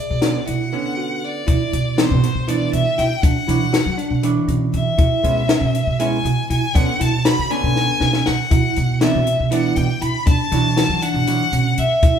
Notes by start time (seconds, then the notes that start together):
Already playing: D5
0.10 B2
0.21 D3 B3 C#4 F#4, snare, closed hi-hat
0.47 B2 E4 F#5, closed hi-hat
0.73 D3 B3 C#4
0.97 F#4
1.24 D5
1.47 B2 E4, kick, closed hi-hat
1.73 B2, closed hi-hat
1.97 E3 B3 C4 D4 C5, snare, closed hi-hat
2.11 B2
2.23 snare, closed hi-hat
2.35 B2
2.47 E3 B3 D4 E4 D5, closed hi-hat
2.73 B2 E5, closed hi-hat
2.98 B2 E4 G5, snare, closed hi-hat
3.21 B2 D4 F#5, kick, closed hi-hat
3.48 B2 E3 F#3 D4 E4, closed hi-hat
3.73 F#4, snare, closed hi-hat
3.86 F#3
3.98 D4, closed hi-hat
4.10 B2
4.23 E3 F#3 D4, closed hi-hat
4.48 B2 C#4, closed hi-hat
4.73 B2 E5, closed hi-hat
4.98 B2 E4, kick, closed hi-hat
5.23 B2 G#3 B3 C#4, closed hi-hat
5.48 C#4, snare, closed hi-hat
5.61 B2
5.75 closed hi-hat
5.87 B2
5.99 G#3 B3 C#4 E4 G#5, closed hi-hat
6.25 B2, closed hi-hat
6.49 B2 E4 G#5, closed hi-hat
6.75 B2 D3 B3 C#4 D4 F#5, kick, closed hi-hat
7.00 B2 E4 A5, closed hi-hat
7.25 F#4 B5, snare, closed hi-hat
7.39 D3
7.50 D3 B3 C#4 D4 G#5, closed hi-hat
7.63 B2
7.76 snare
8.00 B2 C#4, snare
8.13 snare
8.26 B2 F#5, snare
8.51 B2 E4, kick, closed hi-hat
8.76 B2, closed hi-hat
9.00 E3 B3 C4 D4 E5, snare, closed hi-hat
9.15 B2
9.27 closed hi-hat
9.40 B2
9.51 E3 B3 D4 E4 F#5, closed hi-hat
9.76 B2 G5, closed hi-hat
10.01 B2 E4 B5, closed hi-hat
10.26 B2 D4 A5, kick, closed hi-hat
10.51 B2 E3 F#3 D4 E4, snare, closed hi-hat
10.77 F#4, snare, closed hi-hat
10.89 F#3
11.02 D4 F#5, closed hi-hat
11.14 B2
11.27 E3 F#3 D4, closed hi-hat
11.52 B2 C#4, closed hi-hat
11.77 B2 E5, closed hi-hat
12.02 B2 E4, kick, closed hi-hat